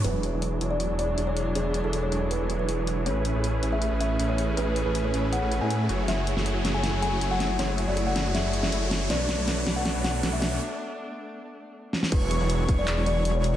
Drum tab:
CC |----------------|----------------|----------------|----------------|
HH |x-x-x-x-x-x-x-x-|x-x-x-x-x-x-x-x-|x-x-x-x-x-x-x-x-|x-x-x-x-x-x-x-x-|
CP |----------------|----------------|----------------|----------------|
SD |----------------|----------------|----------------|----------------|
BD |----------------|----------------|----------------|----------------|

CC |----------------|----------------|----------------|----------------|
HH |x-x-x-x-x-x-x-x-|x-x-x-x-x-x-x-x-|x-x-x-x-x-x-x-x-|----------------|
CP |----------------|----------------|----------------|----------------|
SD |o--o--o-o-----o-|o-----o-o--o--o-|o-o-o-o-o-o-o-o-|--------------oo|
BD |----------------|----------------|----------------|----------------|

CC |x---------------|
HH |x-x-x-x-x-x-x-x-|
CP |--------x-------|
SD |----------------|
BD |o-----o---------|